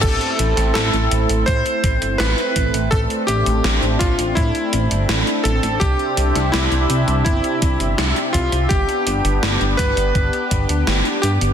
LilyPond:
<<
  \new Staff \with { instrumentName = "Electric grand piano" } { \time 4/4 \key a \minor \tempo 4 = 83 a'4 a'4 c''4 b'4 | a'8 g'4 f'8 e'4. a'8 | g'4 e'4 e'4. f'8 | g'4. b'2 g'8 | }
  \new Staff \with { instrumentName = "Analog synth pad" } { \time 4/4 \key a \minor << { e'1 | d'1 | <c g'>1 | g'1 | } \\ { <a c'>1~ | <a c'>1 | e''1 | <b d'>1 | } >> }
  \new Staff \with { instrumentName = "Analog synth bass" } { \clef bass \time 4/4 \key a \minor a,,16 r16 a,,16 a,,16 a,,16 a,,16 a,,16 a,,16 a,16 r16 a,,16 g,,16 a,,16 r16 a,,16 a,,16 | a,,16 r16 a,,16 a,,16 a,,16 a,,16 a,,16 a,,16 a,16 r16 a,,16 g,,16 a,,16 r16 a,,16 a,,16 | c,16 r16 c,16 c,16 c,16 c,16 c,16 c,16 g,,16 r16 c,16 g,,16 c,16 r16 c,16 c,16 | g,,16 r16 g,,16 g,,16 g,,16 g,,16 g,,16 g,,16 g,,16 r16 g,,16 d,16 g,,16 r16 g,16 g,,16 | }
  \new DrumStaff \with { instrumentName = "Drums" } \drummode { \time 4/4 <cymc hh bd>16 hh16 hh16 <hh sn>16 <hh sn>16 hh16 hh16 hh16 <hh bd>16 hh16 <hh bd>16 hh16 <hh sn>16 hh16 <hh bd>16 hh16 | <hh bd>16 hh16 hh16 hh16 <hh sn>16 hh16 <hh bd sn>16 hh16 <hh bd>16 hh16 hh16 hh16 <hh sn>16 hh16 hh16 hh16 | <hh bd>16 hh16 hh16 <hh sn>16 <hh sn>16 hh16 hh16 hh16 <hh bd>16 hh16 <hh bd>16 hh16 <hh sn>16 hh16 <hh bd>16 hh16 | <hh bd>16 hh16 hh16 hh16 <hh sn>16 hh16 <hh bd sn>16 hh16 <hh bd>16 hh16 <hh bd>16 hh16 <hh sn>16 hh16 hh16 hh16 | }
>>